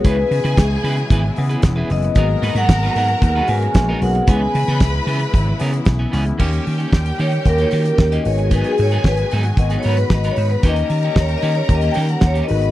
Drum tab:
CC |----------------|----------------|----------------|x---------------|
HH |x-oxx-oxx-oxx-ox|x-oxx-oxx-oxx-ox|x-oxx-oxx-oxx-ox|-xox-xoxxxox-xox|
SD |----o-------o-o-|----o-------o---|----o-------o-o-|----o-------o---|
BD |o---o---o---o---|o---o---o---o---|o---o---o---o---|o---o---o---o---|

CC |----------------|----------------|
HH |xxox-xoxxxox-xox|xxox-xoxxxox-xox|
SD |----o-------o---|----o-------o---|
BD |o---o---o---o---|o---o---o---o---|